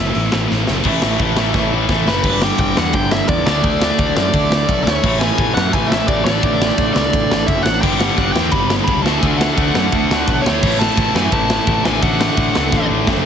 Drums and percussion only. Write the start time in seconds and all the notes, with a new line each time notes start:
0.15 open hi-hat
0.32 snare
0.51 snare
0.67 snare
0.84 kick, crash
1.02 snare
1.19 kick, ride
1.37 snare
1.54 kick, snare
1.89 kick, snare
2.07 snare
2.24 kick, crash
2.42 snare
2.58 kick, ride
2.77 snare
2.93 kick, ride
3.11 snare
3.28 kick, ride
3.47 snare
3.64 kick, ride
3.82 snare
3.98 kick, ride
4.17 snare
4.33 kick, ride
4.52 snare
4.69 kick, ride
4.87 snare
5.04 kick, crash
5.21 snare
5.38 kick, ride
5.57 snare
5.73 kick, ride
5.92 snare
6.08 kick, ride
6.27 snare
6.43 kick, ride
6.62 snare
6.78 kick, ride
6.96 snare
7.13 kick, ride
7.31 snare
7.48 kick, ride
7.66 snare
7.83 kick, crash
8.01 snare
8.18 kick, ride
8.36 snare
8.52 kick, ride
8.70 snare
8.88 kick, ride
9.06 snare
9.23 kick, ride
9.41 snare
9.58 kick, ride
9.75 snare
9.92 kick, ride
10.11 snare
10.28 kick, ride
10.46 snare
10.63 kick, crash
10.81 snare
10.97 kick, ride
11.16 snare
11.32 kick, ride
11.50 snare
11.67 kick, ride
11.85 snare
12.02 kick, ride
12.21 snare
12.37 kick, ride
12.55 snare
12.72 kick, snare
13.07 kick, snare